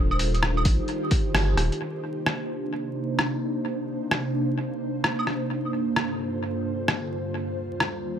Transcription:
Already playing: sub bass D#1, ambient pad D#3 D#4 F4 G4 C5
0.11 claves
0.19 open hi-hat
0.35 closed hi-hat
0.43 cross-stick
0.57 claves
0.65 sub bass A#1, kick, open hi-hat
0.88 closed hi-hat
1.11 kick, open hi-hat
1.34 sub bass G1, cross-stick, open hi-hat
1.56 sub bass D#1, cross-stick, open hi-hat
1.72 closed hi-hat
1.79 ambient pad C3 A#3 D4 D#4 C5
2.26 cross-stick
3.19 cross-stick
4.11 cross-stick
5.04 cross-stick
5.19 claves
5.27 cross-stick
5.49 ambient pad G2 D3 F4 A4
5.96 cross-stick
6.88 cross-stick
7.34 ambient pad D#2 D#3 G3
7.80 cross-stick

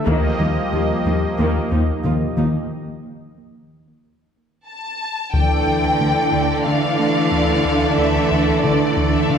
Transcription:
0.06 cello section D#2, analog synth bass D#2, viola section D#3 A#3, synth pluck D#3, analog synth pad F3 A#3 G4 D#5, taiko
0.39 analog synth bass D#2, cello section D#2, viola section F3 D#4, synth pluck G3
0.73 cello section D#2, analog synth bass D#2, viola section G3 F4, synth pluck G3
1.06 analog synth bass D#2, cello section D#2, viola section F3 D#4, synth pluck G3
1.39 analog synth bass D#2, cello section D#2, synth pluck D#3, viola section D#3 A#3
1.71 analog synth bass D#2, cello section D#2, viola section F3 D#4, synth pluck D#4
2.04 cello section D#2, analog synth bass D#3, viola section G3 F4, synth pluck A#3
2.37 cello section D#2, analog synth bass D#3, viola section F3 D#4, synth pluck A#3
4.68 violin section A5
5.34 analog synth bass D2, synth pluck D3, cello section D3, viola section E3 D4, analog synth pad E3 A3 A4 D5, violin section A4 D5 G5, taiko
5.67 analog synth bass D2, synth pluck D4
6.00 analog synth bass D3, synth pluck A3
6.32 analog synth bass D2, synth pluck D3
6.66 analog synth bass D3, synth pluck A3, violin section F5
6.99 analog synth bass D3, synth pluck A3
7.32 analog synth bass D2, synth pluck D3
7.65 analog synth bass D2
7.98 analog synth bass D2, synth pluck D3, violin section E5
8.31 analog synth bass D2, synth pluck D4
8.64 analog synth bass D3, synth pluck A3, violin section D5
8.97 analog synth bass D2, synth pluck D3
9.15 violin section E5
9.30 analog synth bass D3, synth pluck A3, violin section F5

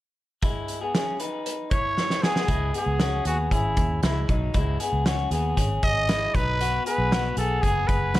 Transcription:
0.42 clean electric guitar G#3 E4, kick, closed hi-hat
0.68 closed hi-hat
0.81 clean electric guitar B3 G#4
0.94 clean electric guitar C#4 G#4, snare, closed hi-hat
1.20 clean electric guitar D#4 B4, closed hi-hat
1.46 closed hi-hat
1.71 clean electric guitar E4 C#5, trumpet C#5, kick, closed hi-hat
1.98 snare
2.10 snare
2.23 clean electric guitar B3 G#4, trumpet G#4, snare
2.36 snare
2.48 fingered electric bass C#2, clean electric guitar G#3 E4, kick, closed hi-hat
2.74 clean electric guitar B3 G#4, trumpet G#4, closed hi-hat
2.86 fingered electric bass C#2
3.00 clean electric guitar C#4 F#4, snare, closed hi-hat
3.25 fingered electric bass D#2, clean electric guitar B3 G#4, trumpet F#4, closed hi-hat
3.51 fingered electric bass G#1, clean electric guitar C#4 G#4, trumpet E4, kick, closed hi-hat
3.77 fingered electric bass D#2, kick, closed hi-hat
4.03 fingered electric bass C#2, clean electric guitar G#3 E4, trumpet E4, snare, closed hi-hat
4.29 fingered electric bass B1, clean electric guitar F#3 D#4, kick, closed hi-hat
4.54 fingered electric bass C#2, clean electric guitar G#3 E4, kick, closed hi-hat
4.80 clean electric guitar B3 G#4, closed hi-hat
4.93 fingered electric bass C#2
5.06 clean electric guitar C#4 F#4, snare, closed hi-hat
5.31 fingered electric bass D#2, clean electric guitar B3 G#4, closed hi-hat
5.57 fingered electric bass G#1, clean electric guitar C#4 G#4, kick, closed hi-hat
5.83 fingered electric bass G#1, trumpet D#5, kick, closed hi-hat
6.09 clean electric guitar G#3 E4, snare, closed hi-hat
6.35 fingered electric bass B1, clean electric guitar F#3 D#4, trumpet B4, kick, closed hi-hat
6.60 clean electric guitar B3 F#4, closed hi-hat
6.86 clean electric guitar B3 G#4, trumpet B4, closed hi-hat
6.98 fingered electric bass B1
7.12 clean electric guitar B3 F#4, snare, closed hi-hat
7.37 fingered electric bass B1, clean electric guitar B3 G#4, trumpet A4, closed hi-hat
7.62 fingered electric bass F#1, clean electric guitar B3 G#4, trumpet G#4, kick, closed hi-hat
7.87 fingered electric bass F#1, trumpet B4, kick, closed hi-hat
8.14 fingered electric bass C#2, clean electric guitar B3 F#4, snare, closed hi-hat

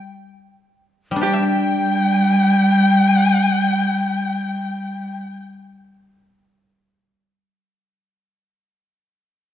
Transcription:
1.11 guzheng G3
1.16 guzheng D4
1.21 cello G3, guzheng G4, pipa G4, erhu G5, dizi G5
1.33 erhu E5
1.43 erhu G5

